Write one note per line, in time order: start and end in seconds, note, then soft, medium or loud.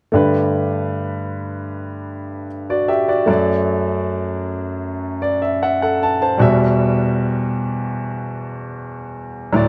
0.12 3.24 G2 soft
0.12 3.24 D3 soft
0.12 3.23 A3 soft
0.12 2.46 G4 soft
0.12 2.47 B4 medium
2.70 2.89 F#4 soft
2.70 2.88 D5 soft
2.88 3.08 G4 soft
2.88 3.07 E5 soft
3.08 3.26 F#4 soft
3.08 3.29 D5 soft
3.26 6.36 F#2 soft
3.26 6.36 F#3 soft
3.26 6.35 A3 soft
3.26 6.36 F#4 soft
3.30 5.20 D5 medium
5.22 5.41 D5 soft
5.42 5.61 E5 soft
5.63 5.81 E5 soft
5.63 5.81 F#5 soft
5.82 6.19 A4 soft
5.82 6.19 F#5 soft
6.03 6.20 A5 soft
6.22 6.59 C5 soft
6.22 6.58 A5 soft
6.38 9.50 E2 medium
6.38 9.50 B2 medium
6.38 9.49 G3 medium
6.38 9.50 F#4 soft
6.42 9.51 E5 medium
9.53 9.68 D2 medium
9.53 9.68 A2 medium
9.53 9.68 F#3 medium
9.53 9.68 E4 soft
9.53 9.68 D5 medium